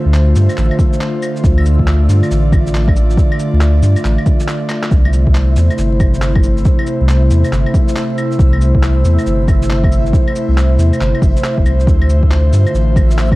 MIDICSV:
0, 0, Header, 1, 5, 480
1, 0, Start_track
1, 0, Key_signature, -1, "minor"
1, 0, Tempo, 434783
1, 1589, Time_signature, 4, 2, 24, 8
1, 14745, End_track
2, 0, Start_track
2, 0, Title_t, "Synth texture"
2, 0, Program_c, 0, 99
2, 0, Note_on_c, 0, 76, 91
2, 5414, Note_off_c, 0, 76, 0
2, 5427, Note_on_c, 0, 76, 91
2, 14745, Note_off_c, 0, 76, 0
2, 14745, End_track
3, 0, Start_track
3, 0, Title_t, "Analog synth pad"
3, 0, Program_c, 1, 89
3, 0, Note_on_c, 1, 50, 82
3, 0, Note_on_c, 1, 57, 74
3, 0, Note_on_c, 1, 65, 76
3, 0, Note_on_c, 1, 72, 89
3, 1547, Note_off_c, 1, 72, 0
3, 1592, Note_on_c, 1, 74, 89
3, 5384, Note_off_c, 1, 50, 0
3, 5385, Note_off_c, 1, 57, 0
3, 5385, Note_off_c, 1, 65, 0
3, 5392, Note_off_c, 1, 74, 0
3, 5424, Note_on_c, 1, 64, 73
3, 5425, Note_on_c, 1, 48, 81
3, 5427, Note_on_c, 1, 72, 89
3, 5428, Note_on_c, 1, 57, 75
3, 13063, Note_off_c, 1, 48, 0
3, 13063, Note_off_c, 1, 64, 0
3, 13064, Note_off_c, 1, 57, 0
3, 13098, Note_on_c, 1, 50, 82
3, 13101, Note_on_c, 1, 65, 75
3, 13102, Note_on_c, 1, 57, 77
3, 14745, Note_off_c, 1, 50, 0
3, 14745, Note_off_c, 1, 57, 0
3, 14745, Note_off_c, 1, 65, 0
3, 14745, Note_off_c, 1, 72, 0
3, 14745, End_track
4, 0, Start_track
4, 0, Title_t, "Sub bass"
4, 0, Program_c, 2, 38
4, 63, Note_on_c, 2, 38, 101
4, 378, Note_off_c, 2, 38, 0
4, 394, Note_on_c, 2, 43, 88
4, 532, Note_off_c, 2, 43, 0
4, 637, Note_on_c, 2, 33, 94
4, 774, Note_off_c, 2, 33, 0
4, 1588, Note_on_c, 2, 38, 100
4, 1962, Note_off_c, 2, 38, 0
4, 1980, Note_on_c, 2, 38, 108
4, 2297, Note_off_c, 2, 38, 0
4, 2308, Note_on_c, 2, 43, 87
4, 2449, Note_off_c, 2, 43, 0
4, 2549, Note_on_c, 2, 33, 86
4, 3498, Note_off_c, 2, 33, 0
4, 3901, Note_on_c, 2, 38, 108
4, 4218, Note_off_c, 2, 38, 0
4, 4226, Note_on_c, 2, 43, 85
4, 4368, Note_off_c, 2, 43, 0
4, 4464, Note_on_c, 2, 33, 94
4, 4608, Note_off_c, 2, 33, 0
4, 5425, Note_on_c, 2, 36, 96
4, 5800, Note_off_c, 2, 36, 0
4, 5819, Note_on_c, 2, 36, 104
4, 6137, Note_off_c, 2, 36, 0
4, 6143, Note_on_c, 2, 40, 88
4, 6287, Note_off_c, 2, 40, 0
4, 6383, Note_on_c, 2, 31, 86
4, 7335, Note_off_c, 2, 31, 0
4, 7738, Note_on_c, 2, 36, 105
4, 8056, Note_off_c, 2, 36, 0
4, 8062, Note_on_c, 2, 40, 86
4, 8206, Note_off_c, 2, 40, 0
4, 8302, Note_on_c, 2, 31, 97
4, 8446, Note_off_c, 2, 31, 0
4, 9264, Note_on_c, 2, 36, 98
4, 9640, Note_off_c, 2, 36, 0
4, 9659, Note_on_c, 2, 36, 101
4, 9976, Note_off_c, 2, 36, 0
4, 9991, Note_on_c, 2, 40, 87
4, 10131, Note_off_c, 2, 40, 0
4, 10226, Note_on_c, 2, 31, 86
4, 11177, Note_off_c, 2, 31, 0
4, 11575, Note_on_c, 2, 36, 105
4, 11895, Note_off_c, 2, 36, 0
4, 11909, Note_on_c, 2, 40, 88
4, 12050, Note_off_c, 2, 40, 0
4, 12150, Note_on_c, 2, 31, 96
4, 12290, Note_off_c, 2, 31, 0
4, 12386, Note_on_c, 2, 31, 88
4, 12528, Note_off_c, 2, 31, 0
4, 12781, Note_on_c, 2, 31, 90
4, 12862, Note_off_c, 2, 31, 0
4, 12869, Note_on_c, 2, 36, 86
4, 13095, Note_off_c, 2, 36, 0
4, 13106, Note_on_c, 2, 38, 100
4, 13481, Note_off_c, 2, 38, 0
4, 13498, Note_on_c, 2, 38, 105
4, 13816, Note_off_c, 2, 38, 0
4, 13830, Note_on_c, 2, 43, 87
4, 13970, Note_off_c, 2, 43, 0
4, 14065, Note_on_c, 2, 33, 86
4, 14745, Note_off_c, 2, 33, 0
4, 14745, End_track
5, 0, Start_track
5, 0, Title_t, "Drums"
5, 153, Note_on_c, 9, 39, 97
5, 153, Note_on_c, 9, 82, 49
5, 263, Note_off_c, 9, 39, 0
5, 263, Note_off_c, 9, 82, 0
5, 393, Note_on_c, 9, 69, 77
5, 393, Note_on_c, 9, 82, 52
5, 504, Note_off_c, 9, 69, 0
5, 504, Note_off_c, 9, 82, 0
5, 544, Note_on_c, 9, 69, 42
5, 544, Note_on_c, 9, 75, 35
5, 544, Note_on_c, 9, 82, 29
5, 632, Note_off_c, 9, 82, 0
5, 632, Note_on_c, 9, 39, 58
5, 632, Note_on_c, 9, 82, 52
5, 654, Note_off_c, 9, 69, 0
5, 654, Note_off_c, 9, 75, 0
5, 743, Note_off_c, 9, 39, 0
5, 743, Note_off_c, 9, 82, 0
5, 784, Note_on_c, 9, 75, 35
5, 869, Note_on_c, 9, 36, 98
5, 874, Note_on_c, 9, 69, 75
5, 895, Note_off_c, 9, 75, 0
5, 980, Note_off_c, 9, 36, 0
5, 984, Note_off_c, 9, 69, 0
5, 1025, Note_on_c, 9, 82, 53
5, 1114, Note_off_c, 9, 82, 0
5, 1114, Note_on_c, 9, 39, 99
5, 1114, Note_on_c, 9, 82, 52
5, 1224, Note_off_c, 9, 39, 0
5, 1224, Note_off_c, 9, 82, 0
5, 1353, Note_on_c, 9, 69, 77
5, 1353, Note_on_c, 9, 75, 51
5, 1463, Note_off_c, 9, 69, 0
5, 1463, Note_off_c, 9, 75, 0
5, 1504, Note_on_c, 9, 82, 29
5, 1588, Note_on_c, 9, 36, 113
5, 1592, Note_off_c, 9, 82, 0
5, 1592, Note_on_c, 9, 82, 53
5, 1699, Note_off_c, 9, 36, 0
5, 1703, Note_off_c, 9, 82, 0
5, 1743, Note_on_c, 9, 75, 67
5, 1831, Note_on_c, 9, 69, 76
5, 1853, Note_off_c, 9, 75, 0
5, 1941, Note_off_c, 9, 69, 0
5, 1980, Note_on_c, 9, 36, 56
5, 2069, Note_on_c, 9, 39, 99
5, 2069, Note_on_c, 9, 82, 51
5, 2091, Note_off_c, 9, 36, 0
5, 2180, Note_off_c, 9, 39, 0
5, 2180, Note_off_c, 9, 82, 0
5, 2311, Note_on_c, 9, 69, 77
5, 2311, Note_on_c, 9, 82, 56
5, 2422, Note_off_c, 9, 69, 0
5, 2422, Note_off_c, 9, 82, 0
5, 2462, Note_on_c, 9, 75, 37
5, 2462, Note_on_c, 9, 82, 29
5, 2552, Note_off_c, 9, 82, 0
5, 2552, Note_on_c, 9, 82, 55
5, 2573, Note_off_c, 9, 75, 0
5, 2662, Note_off_c, 9, 82, 0
5, 2785, Note_on_c, 9, 36, 96
5, 2790, Note_on_c, 9, 69, 77
5, 2790, Note_on_c, 9, 75, 53
5, 2896, Note_off_c, 9, 36, 0
5, 2901, Note_off_c, 9, 69, 0
5, 2901, Note_off_c, 9, 75, 0
5, 2944, Note_on_c, 9, 82, 57
5, 3031, Note_off_c, 9, 82, 0
5, 3031, Note_on_c, 9, 39, 101
5, 3031, Note_on_c, 9, 82, 56
5, 3142, Note_off_c, 9, 39, 0
5, 3142, Note_off_c, 9, 82, 0
5, 3177, Note_on_c, 9, 36, 102
5, 3185, Note_on_c, 9, 75, 53
5, 3271, Note_on_c, 9, 69, 76
5, 3288, Note_off_c, 9, 36, 0
5, 3296, Note_off_c, 9, 75, 0
5, 3381, Note_off_c, 9, 69, 0
5, 3425, Note_on_c, 9, 82, 31
5, 3505, Note_on_c, 9, 36, 112
5, 3512, Note_off_c, 9, 82, 0
5, 3512, Note_on_c, 9, 82, 54
5, 3615, Note_off_c, 9, 36, 0
5, 3622, Note_off_c, 9, 82, 0
5, 3664, Note_on_c, 9, 75, 71
5, 3748, Note_on_c, 9, 69, 77
5, 3774, Note_off_c, 9, 75, 0
5, 3859, Note_off_c, 9, 69, 0
5, 3985, Note_on_c, 9, 39, 99
5, 3985, Note_on_c, 9, 82, 54
5, 4095, Note_off_c, 9, 39, 0
5, 4095, Note_off_c, 9, 82, 0
5, 4225, Note_on_c, 9, 69, 78
5, 4225, Note_on_c, 9, 82, 57
5, 4335, Note_off_c, 9, 69, 0
5, 4335, Note_off_c, 9, 82, 0
5, 4375, Note_on_c, 9, 69, 44
5, 4375, Note_on_c, 9, 75, 38
5, 4375, Note_on_c, 9, 82, 31
5, 4467, Note_off_c, 9, 82, 0
5, 4467, Note_on_c, 9, 39, 57
5, 4467, Note_on_c, 9, 82, 57
5, 4485, Note_off_c, 9, 69, 0
5, 4485, Note_off_c, 9, 75, 0
5, 4577, Note_off_c, 9, 39, 0
5, 4577, Note_off_c, 9, 82, 0
5, 4618, Note_on_c, 9, 75, 37
5, 4704, Note_on_c, 9, 36, 99
5, 4704, Note_on_c, 9, 69, 74
5, 4728, Note_off_c, 9, 75, 0
5, 4815, Note_off_c, 9, 36, 0
5, 4815, Note_off_c, 9, 69, 0
5, 4857, Note_on_c, 9, 82, 57
5, 4947, Note_off_c, 9, 82, 0
5, 4947, Note_on_c, 9, 39, 101
5, 4947, Note_on_c, 9, 82, 58
5, 5057, Note_off_c, 9, 39, 0
5, 5057, Note_off_c, 9, 82, 0
5, 5182, Note_on_c, 9, 39, 86
5, 5182, Note_on_c, 9, 69, 74
5, 5182, Note_on_c, 9, 75, 56
5, 5292, Note_off_c, 9, 39, 0
5, 5292, Note_off_c, 9, 69, 0
5, 5292, Note_off_c, 9, 75, 0
5, 5334, Note_on_c, 9, 39, 97
5, 5334, Note_on_c, 9, 82, 31
5, 5424, Note_off_c, 9, 82, 0
5, 5424, Note_on_c, 9, 36, 119
5, 5424, Note_on_c, 9, 82, 57
5, 5445, Note_off_c, 9, 39, 0
5, 5535, Note_off_c, 9, 36, 0
5, 5535, Note_off_c, 9, 82, 0
5, 5579, Note_on_c, 9, 75, 67
5, 5665, Note_on_c, 9, 69, 71
5, 5689, Note_off_c, 9, 75, 0
5, 5775, Note_off_c, 9, 69, 0
5, 5817, Note_on_c, 9, 36, 61
5, 5905, Note_on_c, 9, 39, 102
5, 5905, Note_on_c, 9, 82, 56
5, 5928, Note_off_c, 9, 36, 0
5, 6015, Note_off_c, 9, 39, 0
5, 6015, Note_off_c, 9, 82, 0
5, 6142, Note_on_c, 9, 69, 73
5, 6142, Note_on_c, 9, 82, 58
5, 6252, Note_off_c, 9, 69, 0
5, 6252, Note_off_c, 9, 82, 0
5, 6297, Note_on_c, 9, 75, 38
5, 6297, Note_on_c, 9, 82, 32
5, 6383, Note_off_c, 9, 82, 0
5, 6383, Note_on_c, 9, 82, 57
5, 6407, Note_off_c, 9, 75, 0
5, 6494, Note_off_c, 9, 82, 0
5, 6624, Note_on_c, 9, 36, 104
5, 6624, Note_on_c, 9, 69, 73
5, 6624, Note_on_c, 9, 75, 54
5, 6734, Note_off_c, 9, 69, 0
5, 6734, Note_off_c, 9, 75, 0
5, 6735, Note_off_c, 9, 36, 0
5, 6777, Note_on_c, 9, 82, 59
5, 6864, Note_off_c, 9, 82, 0
5, 6864, Note_on_c, 9, 39, 105
5, 6864, Note_on_c, 9, 82, 59
5, 6974, Note_off_c, 9, 39, 0
5, 6974, Note_off_c, 9, 82, 0
5, 7014, Note_on_c, 9, 75, 56
5, 7018, Note_on_c, 9, 36, 108
5, 7102, Note_on_c, 9, 69, 74
5, 7125, Note_off_c, 9, 75, 0
5, 7129, Note_off_c, 9, 36, 0
5, 7212, Note_off_c, 9, 69, 0
5, 7256, Note_on_c, 9, 82, 31
5, 7342, Note_off_c, 9, 82, 0
5, 7342, Note_on_c, 9, 82, 55
5, 7346, Note_on_c, 9, 36, 121
5, 7452, Note_off_c, 9, 82, 0
5, 7456, Note_off_c, 9, 36, 0
5, 7496, Note_on_c, 9, 75, 69
5, 7580, Note_on_c, 9, 69, 72
5, 7606, Note_off_c, 9, 75, 0
5, 7691, Note_off_c, 9, 69, 0
5, 7825, Note_on_c, 9, 39, 107
5, 7825, Note_on_c, 9, 82, 57
5, 7935, Note_off_c, 9, 39, 0
5, 7935, Note_off_c, 9, 82, 0
5, 8067, Note_on_c, 9, 69, 71
5, 8067, Note_on_c, 9, 82, 61
5, 8177, Note_off_c, 9, 69, 0
5, 8177, Note_off_c, 9, 82, 0
5, 8219, Note_on_c, 9, 69, 41
5, 8219, Note_on_c, 9, 75, 38
5, 8219, Note_on_c, 9, 82, 33
5, 8310, Note_off_c, 9, 82, 0
5, 8310, Note_on_c, 9, 39, 64
5, 8310, Note_on_c, 9, 82, 57
5, 8329, Note_off_c, 9, 69, 0
5, 8329, Note_off_c, 9, 75, 0
5, 8420, Note_off_c, 9, 39, 0
5, 8420, Note_off_c, 9, 82, 0
5, 8460, Note_on_c, 9, 75, 36
5, 8546, Note_on_c, 9, 36, 109
5, 8549, Note_on_c, 9, 69, 71
5, 8570, Note_off_c, 9, 75, 0
5, 8656, Note_off_c, 9, 36, 0
5, 8660, Note_off_c, 9, 69, 0
5, 8702, Note_on_c, 9, 82, 61
5, 8789, Note_off_c, 9, 82, 0
5, 8789, Note_on_c, 9, 39, 109
5, 8789, Note_on_c, 9, 82, 59
5, 8899, Note_off_c, 9, 39, 0
5, 8899, Note_off_c, 9, 82, 0
5, 9031, Note_on_c, 9, 69, 71
5, 9031, Note_on_c, 9, 75, 54
5, 9141, Note_off_c, 9, 69, 0
5, 9141, Note_off_c, 9, 75, 0
5, 9183, Note_on_c, 9, 82, 32
5, 9266, Note_on_c, 9, 36, 126
5, 9269, Note_off_c, 9, 82, 0
5, 9269, Note_on_c, 9, 82, 54
5, 9376, Note_off_c, 9, 36, 0
5, 9379, Note_off_c, 9, 82, 0
5, 9418, Note_on_c, 9, 75, 64
5, 9509, Note_on_c, 9, 69, 71
5, 9529, Note_off_c, 9, 75, 0
5, 9620, Note_off_c, 9, 69, 0
5, 9659, Note_on_c, 9, 36, 65
5, 9750, Note_on_c, 9, 39, 105
5, 9750, Note_on_c, 9, 82, 55
5, 9769, Note_off_c, 9, 36, 0
5, 9860, Note_off_c, 9, 39, 0
5, 9860, Note_off_c, 9, 82, 0
5, 9990, Note_on_c, 9, 69, 71
5, 9990, Note_on_c, 9, 82, 57
5, 10100, Note_off_c, 9, 69, 0
5, 10100, Note_off_c, 9, 82, 0
5, 10141, Note_on_c, 9, 75, 36
5, 10141, Note_on_c, 9, 82, 31
5, 10228, Note_off_c, 9, 82, 0
5, 10228, Note_on_c, 9, 82, 55
5, 10251, Note_off_c, 9, 75, 0
5, 10338, Note_off_c, 9, 82, 0
5, 10466, Note_on_c, 9, 36, 114
5, 10468, Note_on_c, 9, 69, 70
5, 10468, Note_on_c, 9, 75, 51
5, 10576, Note_off_c, 9, 36, 0
5, 10578, Note_off_c, 9, 69, 0
5, 10578, Note_off_c, 9, 75, 0
5, 10624, Note_on_c, 9, 82, 59
5, 10710, Note_off_c, 9, 82, 0
5, 10710, Note_on_c, 9, 39, 111
5, 10710, Note_on_c, 9, 82, 56
5, 10821, Note_off_c, 9, 39, 0
5, 10821, Note_off_c, 9, 82, 0
5, 10859, Note_on_c, 9, 36, 112
5, 10866, Note_on_c, 9, 75, 51
5, 10951, Note_on_c, 9, 69, 72
5, 10969, Note_off_c, 9, 36, 0
5, 10976, Note_off_c, 9, 75, 0
5, 11061, Note_off_c, 9, 69, 0
5, 11106, Note_on_c, 9, 82, 32
5, 11186, Note_on_c, 9, 36, 124
5, 11192, Note_off_c, 9, 82, 0
5, 11192, Note_on_c, 9, 82, 55
5, 11296, Note_off_c, 9, 36, 0
5, 11303, Note_off_c, 9, 82, 0
5, 11345, Note_on_c, 9, 75, 63
5, 11434, Note_on_c, 9, 69, 70
5, 11455, Note_off_c, 9, 75, 0
5, 11544, Note_off_c, 9, 69, 0
5, 11676, Note_on_c, 9, 39, 107
5, 11676, Note_on_c, 9, 82, 52
5, 11787, Note_off_c, 9, 39, 0
5, 11787, Note_off_c, 9, 82, 0
5, 11914, Note_on_c, 9, 69, 73
5, 11914, Note_on_c, 9, 82, 55
5, 12025, Note_off_c, 9, 69, 0
5, 12025, Note_off_c, 9, 82, 0
5, 12069, Note_on_c, 9, 69, 41
5, 12069, Note_on_c, 9, 75, 34
5, 12069, Note_on_c, 9, 82, 31
5, 12155, Note_off_c, 9, 82, 0
5, 12155, Note_on_c, 9, 39, 63
5, 12155, Note_on_c, 9, 82, 53
5, 12180, Note_off_c, 9, 69, 0
5, 12180, Note_off_c, 9, 75, 0
5, 12265, Note_off_c, 9, 39, 0
5, 12265, Note_off_c, 9, 82, 0
5, 12306, Note_on_c, 9, 75, 34
5, 12387, Note_on_c, 9, 36, 109
5, 12393, Note_on_c, 9, 69, 71
5, 12416, Note_off_c, 9, 75, 0
5, 12497, Note_off_c, 9, 36, 0
5, 12504, Note_off_c, 9, 69, 0
5, 12547, Note_on_c, 9, 82, 57
5, 12629, Note_off_c, 9, 82, 0
5, 12629, Note_on_c, 9, 39, 109
5, 12629, Note_on_c, 9, 82, 55
5, 12740, Note_off_c, 9, 39, 0
5, 12740, Note_off_c, 9, 82, 0
5, 12780, Note_on_c, 9, 36, 63
5, 12871, Note_on_c, 9, 69, 70
5, 12871, Note_on_c, 9, 75, 49
5, 12891, Note_off_c, 9, 36, 0
5, 12981, Note_off_c, 9, 69, 0
5, 12981, Note_off_c, 9, 75, 0
5, 13026, Note_on_c, 9, 82, 31
5, 13107, Note_on_c, 9, 36, 117
5, 13114, Note_off_c, 9, 82, 0
5, 13114, Note_on_c, 9, 82, 52
5, 13218, Note_off_c, 9, 36, 0
5, 13225, Note_off_c, 9, 82, 0
5, 13265, Note_on_c, 9, 75, 63
5, 13355, Note_on_c, 9, 69, 74
5, 13376, Note_off_c, 9, 75, 0
5, 13465, Note_off_c, 9, 69, 0
5, 13502, Note_on_c, 9, 36, 60
5, 13593, Note_on_c, 9, 39, 102
5, 13593, Note_on_c, 9, 82, 51
5, 13612, Note_off_c, 9, 36, 0
5, 13703, Note_off_c, 9, 39, 0
5, 13703, Note_off_c, 9, 82, 0
5, 13833, Note_on_c, 9, 69, 73
5, 13833, Note_on_c, 9, 82, 54
5, 13943, Note_off_c, 9, 69, 0
5, 13943, Note_off_c, 9, 82, 0
5, 13983, Note_on_c, 9, 75, 35
5, 13983, Note_on_c, 9, 82, 30
5, 14074, Note_off_c, 9, 82, 0
5, 14074, Note_on_c, 9, 82, 51
5, 14093, Note_off_c, 9, 75, 0
5, 14184, Note_off_c, 9, 82, 0
5, 14309, Note_on_c, 9, 36, 105
5, 14316, Note_on_c, 9, 69, 73
5, 14316, Note_on_c, 9, 75, 50
5, 14419, Note_off_c, 9, 36, 0
5, 14426, Note_off_c, 9, 69, 0
5, 14426, Note_off_c, 9, 75, 0
5, 14469, Note_on_c, 9, 82, 56
5, 14554, Note_off_c, 9, 82, 0
5, 14554, Note_on_c, 9, 39, 106
5, 14554, Note_on_c, 9, 82, 54
5, 14664, Note_off_c, 9, 39, 0
5, 14664, Note_off_c, 9, 82, 0
5, 14702, Note_on_c, 9, 36, 105
5, 14709, Note_on_c, 9, 75, 52
5, 14745, Note_off_c, 9, 36, 0
5, 14745, Note_off_c, 9, 75, 0
5, 14745, End_track
0, 0, End_of_file